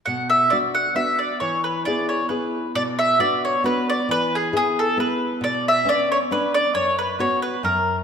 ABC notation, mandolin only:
X:1
M:3/4
L:1/16
Q:1/4=135
K:Bm
V:1 name="Mandolin"
f2 e2 d2 f2 e2 d2 | c2 B2 d2 c2 B4 | d2 e2 d2 c2 B2 d2 | B2 ^G2 G2 A2 B4 |
d2 e2 d2 c2 B2 d2 | c2 B2 c2 B2 ^A3 z |]